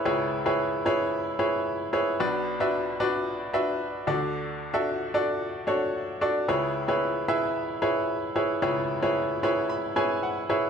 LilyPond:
<<
  \new Staff \with { instrumentName = "Upright piano" } { \time 4/4 \key cis \phrygian \tempo 4 = 112 << { r1 | r1 | r1 | r1 |
r4. b''8 b''8 gis''8 fis''8 e''8 | } \\ { <e' gis' b' cis''>8. <e' gis' b' cis''>8. <e' gis' b' cis''>4 <e' gis' b' cis''>4 <e' gis' b' cis''>8 | <d' fis' b' d''>8. <d' fis' b' e''>8. <d' fis' b' d''>4 <d' fis' b' e''>4 <d' fis' a' d''>8~ | <d' fis' a' d''>8. <d' fis' a' e''>8. <d' fis' a' d''>4 <d' fis' a' cis''>4 <d' fis' a' d''>8 | <e' gis' b' cis''>8. <e' gis' b' cis''>8. <e' gis' b' e''>4 <e' gis' b' cis''>4 <e' gis' b' cis''>8 |
<e' gis' b' cis''>8. <e' gis' b' cis''>8. <e' gis' b' cis''>4 <e' gis' b' cis''>4 <e' gis' b' cis''>8 | } >> }
  \new Staff \with { instrumentName = "Upright piano" } { \clef bass \time 4/4 \key cis \phrygian <cis, cis>1 | <b,, b,>2.~ <b,, b,>8 <d, d>8~ | <d, d>2.~ <d, d>8 r8 | <cis, cis>1 |
<cis, cis>1 | }
>>